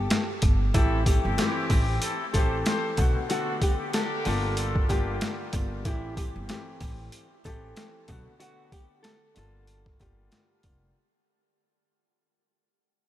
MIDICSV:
0, 0, Header, 1, 6, 480
1, 0, Start_track
1, 0, Tempo, 638298
1, 562, Time_signature, 4, 2, 24, 8
1, 9836, End_track
2, 0, Start_track
2, 0, Title_t, "Nylon-string guitar"
2, 0, Program_c, 0, 24
2, 0, Note_on_c, 0, 67, 89
2, 197, Note_off_c, 0, 67, 0
2, 557, Note_on_c, 0, 64, 100
2, 775, Note_off_c, 0, 64, 0
2, 795, Note_on_c, 0, 67, 74
2, 1150, Note_off_c, 0, 67, 0
2, 1755, Note_on_c, 0, 69, 72
2, 2110, Note_off_c, 0, 69, 0
2, 2484, Note_on_c, 0, 66, 102
2, 2699, Note_off_c, 0, 66, 0
2, 2727, Note_on_c, 0, 67, 90
2, 2941, Note_off_c, 0, 67, 0
2, 2961, Note_on_c, 0, 69, 89
2, 3177, Note_off_c, 0, 69, 0
2, 3213, Note_on_c, 0, 69, 77
2, 3659, Note_off_c, 0, 69, 0
2, 3682, Note_on_c, 0, 67, 91
2, 4033, Note_off_c, 0, 67, 0
2, 4402, Note_on_c, 0, 64, 99
2, 4618, Note_off_c, 0, 64, 0
2, 4645, Note_on_c, 0, 67, 82
2, 4995, Note_off_c, 0, 67, 0
2, 5604, Note_on_c, 0, 69, 74
2, 5954, Note_off_c, 0, 69, 0
2, 6313, Note_on_c, 0, 66, 121
2, 6533, Note_off_c, 0, 66, 0
2, 6560, Note_on_c, 0, 67, 89
2, 6777, Note_off_c, 0, 67, 0
2, 6787, Note_on_c, 0, 69, 90
2, 7010, Note_off_c, 0, 69, 0
2, 7055, Note_on_c, 0, 69, 80
2, 7500, Note_off_c, 0, 69, 0
2, 7527, Note_on_c, 0, 67, 94
2, 7876, Note_off_c, 0, 67, 0
2, 9836, End_track
3, 0, Start_track
3, 0, Title_t, "Trumpet section"
3, 0, Program_c, 1, 61
3, 564, Note_on_c, 1, 60, 102
3, 564, Note_on_c, 1, 64, 100
3, 564, Note_on_c, 1, 69, 115
3, 755, Note_off_c, 1, 60, 0
3, 755, Note_off_c, 1, 64, 0
3, 755, Note_off_c, 1, 69, 0
3, 940, Note_on_c, 1, 60, 90
3, 940, Note_on_c, 1, 64, 89
3, 940, Note_on_c, 1, 67, 97
3, 1023, Note_off_c, 1, 60, 0
3, 1023, Note_off_c, 1, 64, 0
3, 1023, Note_off_c, 1, 67, 0
3, 1033, Note_on_c, 1, 64, 103
3, 1034, Note_on_c, 1, 60, 100
3, 1034, Note_on_c, 1, 67, 113
3, 1488, Note_off_c, 1, 64, 0
3, 1489, Note_off_c, 1, 60, 0
3, 1489, Note_off_c, 1, 67, 0
3, 1523, Note_on_c, 1, 60, 88
3, 1524, Note_on_c, 1, 64, 85
3, 1524, Note_on_c, 1, 69, 104
3, 1715, Note_off_c, 1, 60, 0
3, 1715, Note_off_c, 1, 64, 0
3, 1715, Note_off_c, 1, 69, 0
3, 1754, Note_on_c, 1, 67, 93
3, 1754, Note_on_c, 1, 69, 100
3, 1754, Note_on_c, 1, 72, 106
3, 1949, Note_off_c, 1, 67, 0
3, 1949, Note_off_c, 1, 69, 0
3, 1949, Note_off_c, 1, 72, 0
3, 2001, Note_on_c, 1, 67, 93
3, 2001, Note_on_c, 1, 69, 103
3, 2002, Note_on_c, 1, 72, 114
3, 2193, Note_off_c, 1, 67, 0
3, 2193, Note_off_c, 1, 69, 0
3, 2194, Note_off_c, 1, 72, 0
3, 2483, Note_on_c, 1, 62, 95
3, 2483, Note_on_c, 1, 66, 97
3, 2483, Note_on_c, 1, 69, 102
3, 2674, Note_off_c, 1, 62, 0
3, 2674, Note_off_c, 1, 66, 0
3, 2674, Note_off_c, 1, 69, 0
3, 2852, Note_on_c, 1, 59, 75
3, 2852, Note_on_c, 1, 62, 68
3, 2852, Note_on_c, 1, 67, 87
3, 2938, Note_off_c, 1, 59, 0
3, 2938, Note_off_c, 1, 62, 0
3, 2938, Note_off_c, 1, 67, 0
3, 2956, Note_on_c, 1, 58, 119
3, 2956, Note_on_c, 1, 62, 120
3, 2956, Note_on_c, 1, 67, 127
3, 3410, Note_off_c, 1, 58, 0
3, 3410, Note_off_c, 1, 62, 0
3, 3410, Note_off_c, 1, 67, 0
3, 3442, Note_on_c, 1, 62, 86
3, 3442, Note_on_c, 1, 65, 92
3, 3442, Note_on_c, 1, 69, 95
3, 3634, Note_off_c, 1, 62, 0
3, 3634, Note_off_c, 1, 65, 0
3, 3634, Note_off_c, 1, 69, 0
3, 3670, Note_on_c, 1, 58, 89
3, 3670, Note_on_c, 1, 62, 89
3, 3670, Note_on_c, 1, 67, 97
3, 3866, Note_off_c, 1, 58, 0
3, 3866, Note_off_c, 1, 62, 0
3, 3866, Note_off_c, 1, 67, 0
3, 9836, End_track
4, 0, Start_track
4, 0, Title_t, "Grand piano"
4, 0, Program_c, 2, 0
4, 560, Note_on_c, 2, 52, 101
4, 566, Note_on_c, 2, 57, 81
4, 574, Note_on_c, 2, 60, 79
4, 581, Note_on_c, 2, 67, 108
4, 1007, Note_off_c, 2, 52, 0
4, 1010, Note_off_c, 2, 57, 0
4, 1014, Note_off_c, 2, 60, 0
4, 1017, Note_off_c, 2, 67, 0
4, 1034, Note_on_c, 2, 52, 97
4, 1041, Note_on_c, 2, 57, 89
4, 1047, Note_on_c, 2, 60, 86
4, 1055, Note_on_c, 2, 67, 98
4, 1598, Note_off_c, 2, 52, 0
4, 1602, Note_off_c, 2, 57, 0
4, 1605, Note_off_c, 2, 60, 0
4, 1609, Note_off_c, 2, 67, 0
4, 1765, Note_on_c, 2, 52, 95
4, 1772, Note_on_c, 2, 57, 85
4, 1779, Note_on_c, 2, 60, 88
4, 1786, Note_on_c, 2, 67, 112
4, 2235, Note_off_c, 2, 57, 0
4, 2239, Note_on_c, 2, 50, 101
4, 2243, Note_off_c, 2, 52, 0
4, 2246, Note_on_c, 2, 57, 83
4, 2250, Note_off_c, 2, 60, 0
4, 2253, Note_on_c, 2, 59, 95
4, 2254, Note_off_c, 2, 67, 0
4, 2261, Note_on_c, 2, 66, 113
4, 2401, Note_off_c, 2, 50, 0
4, 2405, Note_off_c, 2, 57, 0
4, 2408, Note_off_c, 2, 59, 0
4, 2412, Note_off_c, 2, 66, 0
4, 2474, Note_on_c, 2, 50, 100
4, 2481, Note_on_c, 2, 57, 91
4, 2488, Note_on_c, 2, 59, 89
4, 2496, Note_on_c, 2, 78, 96
4, 3178, Note_off_c, 2, 50, 0
4, 3189, Note_on_c, 2, 50, 94
4, 3196, Note_on_c, 2, 55, 82
4, 3201, Note_off_c, 2, 57, 0
4, 3203, Note_on_c, 2, 58, 85
4, 3205, Note_off_c, 2, 59, 0
4, 3208, Note_off_c, 2, 78, 0
4, 3211, Note_on_c, 2, 65, 109
4, 3641, Note_off_c, 2, 50, 0
4, 3645, Note_off_c, 2, 55, 0
4, 3648, Note_off_c, 2, 58, 0
4, 3652, Note_off_c, 2, 65, 0
4, 3677, Note_on_c, 2, 50, 93
4, 3684, Note_on_c, 2, 55, 97
4, 3691, Note_on_c, 2, 58, 90
4, 3698, Note_on_c, 2, 65, 111
4, 4125, Note_off_c, 2, 50, 0
4, 4129, Note_off_c, 2, 55, 0
4, 4132, Note_off_c, 2, 58, 0
4, 4136, Note_off_c, 2, 65, 0
4, 4158, Note_on_c, 2, 50, 75
4, 4166, Note_on_c, 2, 55, 75
4, 4173, Note_on_c, 2, 58, 74
4, 4180, Note_on_c, 2, 65, 81
4, 4383, Note_off_c, 2, 50, 0
4, 4387, Note_off_c, 2, 55, 0
4, 4390, Note_off_c, 2, 58, 0
4, 4394, Note_off_c, 2, 65, 0
4, 4401, Note_on_c, 2, 52, 96
4, 4407, Note_on_c, 2, 57, 83
4, 4415, Note_on_c, 2, 60, 82
4, 4422, Note_on_c, 2, 67, 111
4, 4847, Note_off_c, 2, 52, 0
4, 4851, Note_off_c, 2, 57, 0
4, 4854, Note_off_c, 2, 60, 0
4, 4858, Note_off_c, 2, 67, 0
4, 4875, Note_on_c, 2, 52, 96
4, 4882, Note_on_c, 2, 57, 89
4, 4889, Note_on_c, 2, 60, 87
4, 4896, Note_on_c, 2, 67, 99
4, 5439, Note_off_c, 2, 52, 0
4, 5442, Note_off_c, 2, 57, 0
4, 5446, Note_off_c, 2, 60, 0
4, 5449, Note_off_c, 2, 67, 0
4, 5603, Note_on_c, 2, 52, 98
4, 5610, Note_on_c, 2, 57, 89
4, 5617, Note_on_c, 2, 60, 95
4, 5624, Note_on_c, 2, 67, 112
4, 6074, Note_off_c, 2, 57, 0
4, 6078, Note_on_c, 2, 50, 105
4, 6082, Note_off_c, 2, 52, 0
4, 6085, Note_on_c, 2, 57, 82
4, 6089, Note_off_c, 2, 60, 0
4, 6092, Note_on_c, 2, 59, 94
4, 6093, Note_off_c, 2, 67, 0
4, 6099, Note_on_c, 2, 66, 112
4, 6241, Note_off_c, 2, 50, 0
4, 6244, Note_off_c, 2, 57, 0
4, 6248, Note_off_c, 2, 59, 0
4, 6251, Note_off_c, 2, 66, 0
4, 6312, Note_on_c, 2, 50, 101
4, 6319, Note_on_c, 2, 57, 88
4, 6326, Note_on_c, 2, 59, 88
4, 6333, Note_on_c, 2, 78, 99
4, 7017, Note_off_c, 2, 50, 0
4, 7028, Note_on_c, 2, 50, 95
4, 7035, Note_on_c, 2, 55, 86
4, 7040, Note_off_c, 2, 57, 0
4, 7042, Note_on_c, 2, 58, 88
4, 7044, Note_off_c, 2, 59, 0
4, 7047, Note_off_c, 2, 78, 0
4, 7049, Note_on_c, 2, 65, 105
4, 7481, Note_off_c, 2, 50, 0
4, 7485, Note_off_c, 2, 55, 0
4, 7488, Note_off_c, 2, 58, 0
4, 7492, Note_off_c, 2, 65, 0
4, 7516, Note_on_c, 2, 50, 94
4, 7523, Note_on_c, 2, 55, 97
4, 7531, Note_on_c, 2, 58, 88
4, 7538, Note_on_c, 2, 65, 108
4, 7965, Note_off_c, 2, 50, 0
4, 7968, Note_off_c, 2, 55, 0
4, 7972, Note_off_c, 2, 58, 0
4, 7976, Note_off_c, 2, 65, 0
4, 7998, Note_on_c, 2, 50, 72
4, 8005, Note_on_c, 2, 55, 79
4, 8012, Note_on_c, 2, 58, 74
4, 8019, Note_on_c, 2, 65, 81
4, 8223, Note_off_c, 2, 50, 0
4, 8226, Note_off_c, 2, 55, 0
4, 8230, Note_off_c, 2, 58, 0
4, 8233, Note_off_c, 2, 65, 0
4, 9836, End_track
5, 0, Start_track
5, 0, Title_t, "Upright bass"
5, 0, Program_c, 3, 32
5, 323, Note_on_c, 3, 31, 93
5, 520, Note_off_c, 3, 31, 0
5, 563, Note_on_c, 3, 33, 105
5, 871, Note_off_c, 3, 33, 0
5, 939, Note_on_c, 3, 31, 88
5, 1025, Note_off_c, 3, 31, 0
5, 1282, Note_on_c, 3, 33, 102
5, 1479, Note_off_c, 3, 33, 0
5, 1766, Note_on_c, 3, 33, 93
5, 1961, Note_off_c, 3, 33, 0
5, 2243, Note_on_c, 3, 35, 108
5, 2353, Note_off_c, 3, 35, 0
5, 3206, Note_on_c, 3, 31, 102
5, 3599, Note_off_c, 3, 31, 0
5, 3686, Note_on_c, 3, 31, 101
5, 3882, Note_off_c, 3, 31, 0
5, 4164, Note_on_c, 3, 31, 96
5, 4405, Note_off_c, 3, 31, 0
5, 4405, Note_on_c, 3, 33, 107
5, 4711, Note_off_c, 3, 33, 0
5, 4780, Note_on_c, 3, 31, 92
5, 4866, Note_off_c, 3, 31, 0
5, 5122, Note_on_c, 3, 33, 97
5, 5319, Note_off_c, 3, 33, 0
5, 5606, Note_on_c, 3, 33, 92
5, 5801, Note_off_c, 3, 33, 0
5, 6083, Note_on_c, 3, 35, 106
5, 6193, Note_off_c, 3, 35, 0
5, 7046, Note_on_c, 3, 31, 107
5, 7439, Note_off_c, 3, 31, 0
5, 7525, Note_on_c, 3, 31, 99
5, 7721, Note_off_c, 3, 31, 0
5, 8003, Note_on_c, 3, 29, 90
5, 8200, Note_off_c, 3, 29, 0
5, 9836, End_track
6, 0, Start_track
6, 0, Title_t, "Drums"
6, 78, Note_on_c, 9, 42, 94
6, 84, Note_on_c, 9, 38, 122
6, 154, Note_off_c, 9, 42, 0
6, 159, Note_off_c, 9, 38, 0
6, 315, Note_on_c, 9, 42, 74
6, 320, Note_on_c, 9, 36, 95
6, 390, Note_off_c, 9, 42, 0
6, 395, Note_off_c, 9, 36, 0
6, 557, Note_on_c, 9, 83, 56
6, 560, Note_on_c, 9, 42, 93
6, 561, Note_on_c, 9, 36, 123
6, 632, Note_off_c, 9, 83, 0
6, 635, Note_off_c, 9, 42, 0
6, 636, Note_off_c, 9, 36, 0
6, 799, Note_on_c, 9, 36, 92
6, 800, Note_on_c, 9, 42, 82
6, 807, Note_on_c, 9, 83, 77
6, 874, Note_off_c, 9, 36, 0
6, 875, Note_off_c, 9, 42, 0
6, 882, Note_off_c, 9, 83, 0
6, 1039, Note_on_c, 9, 42, 94
6, 1041, Note_on_c, 9, 83, 53
6, 1044, Note_on_c, 9, 38, 109
6, 1114, Note_off_c, 9, 42, 0
6, 1116, Note_off_c, 9, 83, 0
6, 1120, Note_off_c, 9, 38, 0
6, 1277, Note_on_c, 9, 46, 53
6, 1277, Note_on_c, 9, 83, 69
6, 1279, Note_on_c, 9, 36, 90
6, 1352, Note_off_c, 9, 46, 0
6, 1352, Note_off_c, 9, 83, 0
6, 1355, Note_off_c, 9, 36, 0
6, 1516, Note_on_c, 9, 42, 99
6, 1522, Note_on_c, 9, 83, 53
6, 1592, Note_off_c, 9, 42, 0
6, 1598, Note_off_c, 9, 83, 0
6, 1758, Note_on_c, 9, 83, 69
6, 1763, Note_on_c, 9, 36, 101
6, 1766, Note_on_c, 9, 42, 83
6, 1833, Note_off_c, 9, 83, 0
6, 1838, Note_off_c, 9, 36, 0
6, 1841, Note_off_c, 9, 42, 0
6, 1996, Note_on_c, 9, 83, 51
6, 1999, Note_on_c, 9, 42, 94
6, 2005, Note_on_c, 9, 38, 115
6, 2071, Note_off_c, 9, 83, 0
6, 2074, Note_off_c, 9, 42, 0
6, 2080, Note_off_c, 9, 38, 0
6, 2236, Note_on_c, 9, 42, 72
6, 2241, Note_on_c, 9, 36, 99
6, 2241, Note_on_c, 9, 83, 81
6, 2311, Note_off_c, 9, 42, 0
6, 2316, Note_off_c, 9, 36, 0
6, 2316, Note_off_c, 9, 83, 0
6, 2477, Note_on_c, 9, 83, 56
6, 2480, Note_on_c, 9, 42, 95
6, 2552, Note_off_c, 9, 83, 0
6, 2555, Note_off_c, 9, 42, 0
6, 2719, Note_on_c, 9, 36, 94
6, 2720, Note_on_c, 9, 42, 80
6, 2727, Note_on_c, 9, 83, 77
6, 2794, Note_off_c, 9, 36, 0
6, 2795, Note_off_c, 9, 42, 0
6, 2802, Note_off_c, 9, 83, 0
6, 2959, Note_on_c, 9, 42, 95
6, 2961, Note_on_c, 9, 83, 54
6, 2965, Note_on_c, 9, 38, 109
6, 3034, Note_off_c, 9, 42, 0
6, 3037, Note_off_c, 9, 83, 0
6, 3040, Note_off_c, 9, 38, 0
6, 3197, Note_on_c, 9, 83, 69
6, 3198, Note_on_c, 9, 46, 51
6, 3273, Note_off_c, 9, 46, 0
6, 3273, Note_off_c, 9, 83, 0
6, 3436, Note_on_c, 9, 42, 103
6, 3444, Note_on_c, 9, 83, 52
6, 3512, Note_off_c, 9, 42, 0
6, 3520, Note_off_c, 9, 83, 0
6, 3576, Note_on_c, 9, 36, 96
6, 3652, Note_off_c, 9, 36, 0
6, 3678, Note_on_c, 9, 83, 66
6, 3684, Note_on_c, 9, 36, 98
6, 3687, Note_on_c, 9, 42, 85
6, 3754, Note_off_c, 9, 83, 0
6, 3759, Note_off_c, 9, 36, 0
6, 3762, Note_off_c, 9, 42, 0
6, 3916, Note_on_c, 9, 83, 50
6, 3920, Note_on_c, 9, 42, 99
6, 3925, Note_on_c, 9, 38, 120
6, 3991, Note_off_c, 9, 83, 0
6, 3995, Note_off_c, 9, 42, 0
6, 4000, Note_off_c, 9, 38, 0
6, 4157, Note_on_c, 9, 42, 75
6, 4161, Note_on_c, 9, 83, 81
6, 4162, Note_on_c, 9, 36, 100
6, 4232, Note_off_c, 9, 42, 0
6, 4236, Note_off_c, 9, 83, 0
6, 4237, Note_off_c, 9, 36, 0
6, 4397, Note_on_c, 9, 83, 57
6, 4401, Note_on_c, 9, 42, 94
6, 4402, Note_on_c, 9, 36, 122
6, 4473, Note_off_c, 9, 83, 0
6, 4476, Note_off_c, 9, 42, 0
6, 4477, Note_off_c, 9, 36, 0
6, 4640, Note_on_c, 9, 36, 93
6, 4641, Note_on_c, 9, 42, 80
6, 4646, Note_on_c, 9, 83, 76
6, 4715, Note_off_c, 9, 36, 0
6, 4716, Note_off_c, 9, 42, 0
6, 4721, Note_off_c, 9, 83, 0
6, 4880, Note_on_c, 9, 42, 93
6, 4880, Note_on_c, 9, 83, 53
6, 4885, Note_on_c, 9, 38, 111
6, 4955, Note_off_c, 9, 42, 0
6, 4955, Note_off_c, 9, 83, 0
6, 4960, Note_off_c, 9, 38, 0
6, 5116, Note_on_c, 9, 83, 68
6, 5118, Note_on_c, 9, 46, 54
6, 5120, Note_on_c, 9, 36, 91
6, 5192, Note_off_c, 9, 83, 0
6, 5193, Note_off_c, 9, 46, 0
6, 5195, Note_off_c, 9, 36, 0
6, 5357, Note_on_c, 9, 42, 103
6, 5362, Note_on_c, 9, 83, 50
6, 5432, Note_off_c, 9, 42, 0
6, 5437, Note_off_c, 9, 83, 0
6, 5596, Note_on_c, 9, 83, 65
6, 5604, Note_on_c, 9, 36, 97
6, 5607, Note_on_c, 9, 42, 86
6, 5671, Note_off_c, 9, 83, 0
6, 5679, Note_off_c, 9, 36, 0
6, 5682, Note_off_c, 9, 42, 0
6, 5836, Note_on_c, 9, 83, 52
6, 5840, Note_on_c, 9, 42, 95
6, 5845, Note_on_c, 9, 38, 120
6, 5911, Note_off_c, 9, 83, 0
6, 5915, Note_off_c, 9, 42, 0
6, 5920, Note_off_c, 9, 38, 0
6, 6076, Note_on_c, 9, 42, 72
6, 6080, Note_on_c, 9, 83, 77
6, 6081, Note_on_c, 9, 36, 98
6, 6151, Note_off_c, 9, 42, 0
6, 6156, Note_off_c, 9, 36, 0
6, 6156, Note_off_c, 9, 83, 0
6, 6316, Note_on_c, 9, 83, 56
6, 6320, Note_on_c, 9, 42, 93
6, 6392, Note_off_c, 9, 83, 0
6, 6395, Note_off_c, 9, 42, 0
6, 6559, Note_on_c, 9, 36, 89
6, 6560, Note_on_c, 9, 42, 80
6, 6565, Note_on_c, 9, 83, 78
6, 6634, Note_off_c, 9, 36, 0
6, 6635, Note_off_c, 9, 42, 0
6, 6640, Note_off_c, 9, 83, 0
6, 6798, Note_on_c, 9, 42, 95
6, 6800, Note_on_c, 9, 83, 53
6, 6804, Note_on_c, 9, 38, 109
6, 6873, Note_off_c, 9, 42, 0
6, 6875, Note_off_c, 9, 83, 0
6, 6879, Note_off_c, 9, 38, 0
6, 7037, Note_on_c, 9, 42, 74
6, 7037, Note_on_c, 9, 83, 68
6, 7112, Note_off_c, 9, 42, 0
6, 7112, Note_off_c, 9, 83, 0
6, 7275, Note_on_c, 9, 42, 101
6, 7282, Note_on_c, 9, 83, 50
6, 7351, Note_off_c, 9, 42, 0
6, 7357, Note_off_c, 9, 83, 0
6, 7416, Note_on_c, 9, 36, 99
6, 7417, Note_on_c, 9, 38, 35
6, 7491, Note_off_c, 9, 36, 0
6, 7492, Note_off_c, 9, 38, 0
6, 7516, Note_on_c, 9, 83, 65
6, 7523, Note_on_c, 9, 36, 103
6, 7526, Note_on_c, 9, 42, 84
6, 7591, Note_off_c, 9, 83, 0
6, 7598, Note_off_c, 9, 36, 0
6, 7601, Note_off_c, 9, 42, 0
6, 7754, Note_on_c, 9, 83, 51
6, 7759, Note_on_c, 9, 42, 94
6, 7765, Note_on_c, 9, 38, 120
6, 7829, Note_off_c, 9, 83, 0
6, 7834, Note_off_c, 9, 42, 0
6, 7840, Note_off_c, 9, 38, 0
6, 7995, Note_on_c, 9, 42, 72
6, 7998, Note_on_c, 9, 83, 80
6, 8001, Note_on_c, 9, 36, 98
6, 8071, Note_off_c, 9, 42, 0
6, 8073, Note_off_c, 9, 83, 0
6, 8076, Note_off_c, 9, 36, 0
6, 9836, End_track
0, 0, End_of_file